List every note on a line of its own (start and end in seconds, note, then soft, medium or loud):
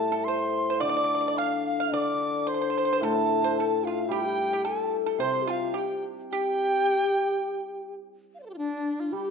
0.00 0.84 A2 medium
0.00 0.27 G3 medium
0.00 0.28 A4 medium
0.00 0.26 A5 loud
0.12 0.26 A4 medium
0.24 0.77 C5 medium
0.24 0.67 C5 medium
0.24 0.83 C6 loud
0.70 0.80 C5 medium
0.78 1.91 D3 medium
0.78 0.88 D5 medium
0.78 0.85 F5 medium
0.78 1.40 D6 loud
0.84 1.41 D5 medium
0.89 0.95 D5 medium
0.97 1.03 D5 medium
1.04 1.12 D5 medium
1.15 1.19 D5 medium
1.21 1.27 D5 medium
1.28 1.35 D5 medium
1.38 1.93 F5 medium
1.38 1.77 F5 medium
1.38 1.94 F5 loud
1.80 1.93 F5 medium
1.92 3.56 D3 medium
1.92 2.51 D5 medium
1.92 2.44 D5 medium
1.92 2.50 D6 loud
2.47 2.53 C5 medium
2.47 3.05 C5 medium
2.47 3.06 C6 loud
2.54 2.60 C5 medium
2.61 2.69 C5 medium
2.70 2.76 C5 medium
2.78 2.84 C5 medium
2.85 2.91 C5 medium
2.93 2.99 C5 medium
3.01 4.65 A2 medium
3.01 3.41 A4 medium
3.01 3.57 A4 medium
3.01 3.57 A5 loud
3.44 3.56 C5 medium
3.57 3.85 A4 medium
3.57 3.84 A4 medium
3.57 3.86 A5 medium
3.84 4.14 F4 medium
3.84 4.11 F4 medium
3.84 4.14 F5 medium
4.09 5.74 G3 medium
4.09 4.49 G4 medium
4.13 4.22 G4 medium
4.13 4.66 G5 loud
4.20 4.28 F4 medium
4.26 4.68 G4 medium
4.53 4.64 G4 medium
4.65 5.03 A4 medium
4.65 5.22 A4 medium
4.65 4.96 A5 loud
5.06 5.19 A4 medium
5.18 6.86 C3 medium
5.18 5.46 C5 medium
5.18 5.43 C5 medium
5.18 5.51 C6 loud
5.42 5.48 G4 medium
5.47 5.77 F4 medium
5.47 5.73 F4 medium
5.47 5.80 F5 medium
5.74 6.01 G4 medium
5.74 6.03 G4 medium
5.78 6.05 G5 medium
6.31 7.95 G4 loud
6.31 7.96 G4 medium
6.31 7.95 G5 loud
8.34 8.39 F5 soft
8.40 8.45 C5 medium
8.40 8.42 D5 soft
8.46 8.53 G4 medium
8.46 8.49 A4 medium
8.54 9.13 D4 medium
8.54 8.57 F4 medium
8.58 9.01 D4 medium
9.00 9.15 F4 medium
9.12 9.30 G3 soft
9.12 9.30 G4 medium